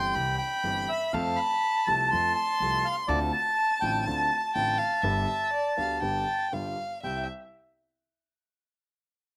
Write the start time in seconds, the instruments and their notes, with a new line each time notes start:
Already playing: grand piano G1 G2 E3 G3 C4 G4, upright bass G1, bandoneon G5, violin C6
0.14 grand piano C2 C3 E3 G3 C4 G4, upright bass C2, violin B5
0.38 bandoneon G5
0.64 grand piano G1 G2 E3 G3 C4 G4, upright bass G1
0.89 bandoneon E5
1.13 grand piano F2 F3 A3 C4 A4, upright bass F2, bandoneon F5, violin A5
1.36 bandoneon B5
1.87 grand piano C2 C3 F3 A3 C4 A4, upright bass C2, bandoneon A5
2.12 grand piano F2 F3 A3 C4 A4, upright bass F2, violin C6
2.35 bandoneon A5
2.60 upright bass C2, grand piano C2 C3 F3 A3 C4 A4
2.85 bandoneon F5
3.08 upright bass D2, grand piano D2 D3 A3 C4 F4, bandoneon D5, violin A5
3.33 bandoneon A5
3.81 upright bass A1, grand piano A1 A2 D3 A3 C4 F4, bandoneon G5
4.05 grand piano D2 D3 A3 C4 F4, upright bass D2, bandoneon A5
4.55 grand piano A1 A2 D3 A3 C4 F4, upright bass A1, violin G5
4.78 violin F5
5.02 upright bass G1, grand piano G1 G2 D3 G3 B3 G4, violin E5
5.53 violin D5
5.77 grand piano D2 D3 G3 B3 G4, upright bass D2, violin F5
6.02 grand piano G1 G2 D3 G3 B3 G4, upright bass G1, violin G5
6.52 grand piano G1 G2 D3 G3 B3 F4, upright bass G1, violin F5
7.03 grand piano C2 G3 C4 E4, upright bass C2, violin E5, bandoneon G5